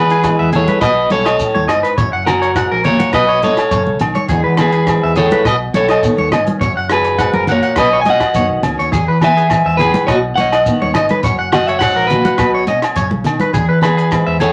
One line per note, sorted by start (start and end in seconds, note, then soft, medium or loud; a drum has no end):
0.00 0.82 E2 medium
0.00 0.24 E3 medium
0.00 0.35 E3 medium
0.00 0.25 G#3 medium
0.00 0.53 B3 medium
0.00 0.49 G#4 medium
0.00 0.80 G#4 medium
0.00 0.50 B4 medium
0.10 0.20 G#4 medium
0.10 closed hi-hat soft
0.23 0.79 E3 medium
0.23 0.79 G#3 medium
0.23 kick medium
0.23 cross-stick medium
0.23 closed hi-hat soft
0.23 low agogo soft
0.23 shekere medium
0.39 0.66 E2 medium
0.39 0.48 E5 medium
0.52 1.12 B3 soft
0.52 0.63 G#4 medium
0.52 0.81 A4 medium
0.52 0.81 C#5 medium
0.52 closed hi-hat soft
0.52 low conga medium
0.52 shekere medium
0.68 0.78 B4 medium
0.68 closed hi-hat soft
0.68 high conga medium
0.81 1.08 B1 medium
0.81 1.40 B2 medium
0.81 1.09 B4 medium
0.81 1.11 D#5 medium
0.81 0.92 D#5 medium
0.81 kick medium
0.81 cross-stick medium
0.81 closed hi-hat medium
0.81 low agogo medium
0.81 shekere medium
1.10 1.37 B1 medium
1.10 1.95 C#4 medium
1.10 1.65 A4 medium
1.10 1.21 C#5 medium
1.10 1.66 C#5 medium
1.10 closed hi-hat soft
1.10 high conga medium
1.10 shekere medium
1.26 1.35 D#5 medium
1.26 cross-stick medium
1.26 closed hi-hat soft
1.26 low agogo medium
1.39 1.69 A2 medium
1.39 kick medium
1.39 closed hi-hat medium
1.39 shekere loud
1.55 1.68 D#2 medium
1.55 1.64 C#5 medium
1.55 high conga medium
1.68 1.82 G1 medium
1.68 1.99 G#2 medium
1.68 1.79 D#5 medium
1.68 cross-stick medium
1.68 closed hi-hat medium
1.68 low agogo medium
1.68 shekere medium
1.83 1.93 B4 medium
1.83 closed hi-hat soft
1.98 2.12 F#1 loud
1.98 2.57 F#2 medium
1.98 2.08 C#5 medium
1.98 kick medium
1.98 closed hi-hat soft
1.98 low conga medium
1.98 shekere medium
2.12 2.67 F#1 medium
2.12 2.22 F#5 medium
2.26 3.12 C#4 medium
2.26 2.81 F#4 medium
2.26 2.81 A#4 medium
2.26 cross-stick medium
2.26 closed hi-hat soft
2.26 low conga medium
2.26 low agogo medium
2.26 shekere medium
2.42 2.51 C#5 medium
2.42 closed hi-hat soft
2.56 2.85 G#2 medium
2.56 2.66 F#5 medium
2.56 kick medium
2.56 cross-stick medium
2.56 closed hi-hat soft
2.56 low agogo medium
2.56 shekere medium
2.71 2.98 A#1 medium
2.71 2.81 A#4 medium
2.84 3.14 A#2 medium
2.84 3.12 A#4 medium
2.84 2.95 C#5 medium
2.84 3.14 C#5 medium
2.84 closed hi-hat soft
2.84 low conga medium
2.84 shekere medium
3.00 3.09 F#5 medium
3.00 closed hi-hat soft
3.00 high conga medium
3.13 3.44 B1 medium
3.13 3.72 B2 medium
3.13 3.41 B4 medium
3.13 3.24 B4 medium
3.13 3.44 D#5 medium
3.13 kick medium
3.13 cross-stick medium
3.13 closed hi-hat soft
3.13 low agogo medium
3.13 shekere medium
3.28 3.38 C#5 medium
3.42 3.57 B2 medium
3.42 4.27 C#4 medium
3.42 3.97 A4 medium
3.42 3.97 C#5 medium
3.42 3.53 D#5 medium
3.42 closed hi-hat soft
3.42 high conga medium
3.42 shekere medium
3.57 cross-stick medium
3.57 closed hi-hat soft
3.57 low agogo medium
3.71 3.85 F#2 medium
3.71 4.01 C#3 medium
3.71 3.82 C#5 medium
3.71 kick medium
3.71 closed hi-hat soft
3.71 shekere medium
3.87 4.00 B1 medium
3.87 high conga medium
3.99 4.14 B1 medium
3.99 4.30 D#3 medium
3.99 closed hi-hat soft
3.99 low conga medium
3.99 low agogo medium
3.99 shekere medium
4.15 4.25 C#5 medium
4.15 closed hi-hat soft
4.15 high conga medium
4.28 4.43 E2 medium
4.28 4.87 E2 medium
4.28 5.43 E3 medium
4.28 5.43 G#3 medium
4.28 4.58 B3 medium
4.28 4.40 G#4 medium
4.28 kick medium
4.28 closed hi-hat soft
4.28 low conga medium
4.28 shekere medium
4.33 5.44 G#4 medium
4.44 4.99 E3 medium
4.44 4.53 B4 medium
4.57 5.75 B3 medium
4.57 5.14 G#4 medium
4.57 5.17 B4 medium
4.57 cross-stick medium
4.57 closed hi-hat soft
4.57 low conga medium
4.57 low agogo medium
4.57 shekere medium
4.72 4.82 G#4 medium
4.72 closed hi-hat soft
4.87 5.16 G#2 medium
4.87 kick medium
4.87 cross-stick medium
4.87 closed hi-hat soft
4.87 low agogo medium
4.87 shekere medium
5.03 5.29 E2 medium
5.03 5.12 E5 medium
5.16 5.45 A2 medium
5.16 5.26 G#4 medium
5.16 5.44 A4 medium
5.16 5.47 C#5 medium
5.16 closed hi-hat soft
5.16 low conga medium
5.16 shekere medium
5.31 5.41 B4 medium
5.31 closed hi-hat soft
5.31 high conga medium
5.45 5.72 B1 medium
5.45 6.04 B2 medium
5.45 5.56 B4 medium
5.45 5.56 D#5 medium
5.45 5.55 D#5 medium
5.45 kick medium
5.45 cross-stick medium
5.45 closed hi-hat soft
5.45 low agogo medium
5.45 shekere medium
5.74 6.00 B1 medium
5.74 6.31 C#4 medium
5.74 6.29 A4 medium
5.74 5.85 C#5 medium
5.74 6.29 C#5 medium
5.74 closed hi-hat soft
5.74 high conga medium
5.74 shekere medium
5.89 5.99 D#5 medium
5.89 cross-stick medium
5.89 closed hi-hat soft
5.89 low agogo medium
6.03 6.58 D#3 medium
6.03 6.58 B3 medium
6.03 kick medium
6.03 closed hi-hat soft
6.03 shekere medium
6.18 6.30 D#2 medium
6.18 6.28 C#5 medium
6.18 high conga medium
6.30 6.45 G#2 medium
6.30 6.58 C#4 medium
6.30 6.42 D#5 medium
6.30 cross-stick medium
6.30 closed hi-hat medium
6.30 low conga medium
6.30 low agogo medium
6.30 shekere medium
6.47 closed hi-hat soft
6.47 high conga medium
6.61 6.75 F#1 loud
6.61 7.19 F#2 medium
6.61 6.71 C#5 medium
6.61 kick medium
6.61 closed hi-hat soft
6.61 low conga medium
6.61 shekere loud
6.76 7.30 F#1 medium
6.76 6.86 F#5 medium
6.90 7.74 F#4 medium
6.90 7.45 G#4 medium
6.90 7.45 B4 medium
6.90 cross-stick medium
6.90 closed hi-hat soft
6.90 low agogo medium
6.90 shekere medium
7.04 muted clean electric guitar stroke medium
7.04 closed hi-hat soft
7.19 7.48 G#2 medium
7.19 7.29 F#5 medium
7.19 kick medium
7.19 cross-stick medium
7.19 closed hi-hat soft
7.19 low agogo medium
7.19 shekere medium
7.33 7.60 F#1 medium
7.33 7.43 A#4 medium
7.33 high conga medium
7.47 7.76 A#2 medium
7.47 7.59 F#5 medium
7.47 closed hi-hat soft
7.47 low conga medium
7.47 shekere medium
7.51 7.77 A#4 medium
7.51 7.80 C#5 medium
7.63 7.72 F#5 medium
7.63 closed hi-hat soft
7.76 8.06 B1 medium
7.76 8.35 B3 medium
7.76 8.05 C#4 medium
7.76 8.91 F#4 medium
7.76 7.88 B4 medium
7.76 8.01 D#5 medium
7.76 muted steel-string acoustic guitar stroke medium
7.76 kick medium
7.76 cross-stick medium
7.76 closed hi-hat soft
7.76 low agogo medium
7.76 shekere medium
7.80 7.99 B4 medium
7.93 8.02 C#5 medium
8.01 8.19 B2 medium
8.01 8.07 G#5 medium
8.01 high conga medium
8.06 8.64 C#4 medium
8.06 8.16 D#5 medium
8.06 closed hi-hat soft
8.06 shekere medium
8.10 8.62 D#5 medium
8.10 8.62 F#5 medium
8.20 kick soft
8.20 cross-stick medium
8.20 closed hi-hat soft
8.20 low agogo medium
8.34 8.48 F#2 medium
8.34 8.89 D#3 medium
8.34 8.90 B3 medium
8.34 8.46 C#5 medium
8.34 kick medium
8.34 closed hi-hat soft
8.34 shekere loud
8.49 8.62 B1 medium
8.62 8.76 C#2 medium
8.62 8.90 C#4 medium
8.62 closed hi-hat medium
8.62 low conga medium
8.62 low agogo medium
8.62 shekere medium
8.77 8.90 D#2 medium
8.77 8.88 C#5 medium
8.77 closed hi-hat soft
8.92 9.06 E2 medium
8.92 9.50 E2 medium
8.92 9.03 G#4 medium
8.92 kick medium
8.92 closed hi-hat soft
8.92 low conga medium
8.92 shekere medium
9.07 9.61 E3 medium
9.07 9.17 B4 medium
9.21 10.38 B3 medium
9.21 9.77 E5 medium
9.21 9.77 G#5 medium
9.21 cross-stick medium
9.21 closed hi-hat soft
9.21 low conga medium
9.21 low agogo medium
9.21 shekere medium
9.37 9.46 G#4 medium
9.37 closed hi-hat soft
9.50 9.79 G#2 medium
9.50 kick medium
9.50 cross-stick medium
9.50 closed hi-hat soft
9.50 low agogo medium
9.50 shekere medium
9.65 9.91 E2 medium
9.65 9.75 E5 medium
9.77 10.09 A2 medium
9.77 9.90 G#4 medium
9.77 10.07 G#4 medium
9.77 10.05 B4 medium
9.77 closed hi-hat soft
9.77 low conga medium
9.77 shekere medium
9.94 10.04 B4 medium
9.94 closed hi-hat soft
9.94 high conga medium
10.07 10.34 B1 medium
10.07 10.67 B2 medium
10.07 10.15 C#5 medium
10.07 10.18 D#5 medium
10.07 kick medium
10.07 cross-stick medium
10.07 closed hi-hat soft
10.07 low agogo medium
10.07 shekere medium
10.11 10.19 F#4 medium
10.35 10.63 B1 medium
10.35 10.47 C#5 medium
10.35 10.90 F#5 medium
10.35 muted steel-string acoustic guitar stroke medium
10.35 closed hi-hat soft
10.35 high conga medium
10.35 shekere medium
10.40 10.92 D#5 medium
10.52 10.62 D#5 medium
10.52 cross-stick medium
10.52 closed hi-hat soft
10.52 low agogo medium
10.66 11.21 D#3 medium
10.66 11.21 B3 medium
10.66 kick medium
10.66 closed hi-hat medium
10.66 shekere loud
10.82 10.93 D#2 medium
10.82 10.91 C#5 medium
10.82 high conga medium
10.94 11.08 G#1 medium
10.94 11.21 C#4 medium
10.94 11.05 D#5 medium
10.94 cross-stick medium
10.94 closed hi-hat medium
10.94 low conga medium
10.94 low agogo medium
10.94 shekere medium
11.09 11.20 B4 medium
11.09 closed hi-hat soft
11.09 high conga medium
11.23 11.37 F#1 loud
11.23 11.81 F#2 medium
11.23 11.34 C#5 medium
11.23 kick medium
11.23 closed hi-hat medium
11.23 low conga medium
11.23 shekere medium
11.38 11.92 F#1 medium
11.38 11.48 F#5 medium
11.52 12.36 F#4 medium
11.52 11.68 D#5 medium
11.52 11.67 F#5 medium
11.52 cross-stick medium
11.52 closed hi-hat soft
11.52 low conga medium
11.52 low agogo medium
11.52 shekere medium
11.67 11.78 C#5 medium
11.67 11.81 C#5 medium
11.67 11.79 E5 medium
11.67 closed hi-hat soft
11.79 12.10 G#2 medium
11.79 12.07 C#5 medium
11.79 12.10 F#5 medium
11.79 11.92 F#5 medium
11.79 kick medium
11.79 cross-stick medium
11.79 closed hi-hat soft
11.79 low agogo medium
11.79 shekere medium
11.96 12.22 A#1 medium
11.96 12.06 A#4 medium
12.07 12.38 A#2 medium
12.07 12.64 F#4 medium
12.07 12.62 B4 medium
12.07 closed hi-hat soft
12.07 low conga medium
12.07 shekere medium
12.25 12.34 F#5 medium
12.25 closed hi-hat soft
12.25 high conga medium
12.38 12.69 B1 medium
12.38 12.96 B2 medium
12.38 12.49 B4 medium
12.38 kick medium
12.38 cross-stick medium
12.38 closed hi-hat medium
12.38 low agogo medium
12.38 shekere medium
12.54 12.64 C#5 medium
12.67 12.81 B2 medium
12.67 13.51 C#4 medium
12.67 12.78 D#5 medium
12.67 closed hi-hat soft
12.67 high conga medium
12.67 shekere medium
12.82 cross-stick medium
12.82 closed hi-hat soft
12.82 low agogo medium
12.96 13.10 F#2 medium
12.96 13.25 C#3 medium
12.96 13.07 C#5 medium
12.96 kick medium
12.96 closed hi-hat medium
12.96 shekere medium
13.11 13.24 B1 medium
13.11 high conga medium
13.24 13.39 B2 medium
13.24 13.54 D#3 medium
13.24 closed hi-hat soft
13.24 low conga medium
13.24 low agogo medium
13.24 shekere medium
13.40 13.50 B4 medium
13.40 closed hi-hat soft
13.40 high conga medium
13.53 13.67 E2 medium
13.53 14.12 E2 medium
13.53 13.64 G#4 medium
13.53 kick medium
13.53 closed hi-hat soft
13.53 low conga medium
13.53 shekere medium
13.68 14.22 E3 medium
13.68 13.78 B4 medium
13.82 14.53 B3 medium
13.82 14.37 G#4 medium
13.82 14.37 B4 medium
13.82 cross-stick medium
13.82 closed hi-hat soft
13.82 low conga medium
13.82 low agogo medium
13.82 shekere medium
13.97 14.07 G#4 medium
13.97 closed hi-hat soft
14.11 14.41 G#2 medium
14.11 kick medium
14.11 cross-stick medium
14.11 closed hi-hat soft
14.11 low agogo medium
14.11 shekere medium
14.26 14.53 E2 medium
14.26 14.36 E5 medium
14.40 14.53 A2 medium
14.40 14.51 G#4 medium
14.40 14.53 A4 medium
14.40 14.53 C#5 medium
14.40 closed hi-hat medium
14.40 low conga medium
14.40 shekere medium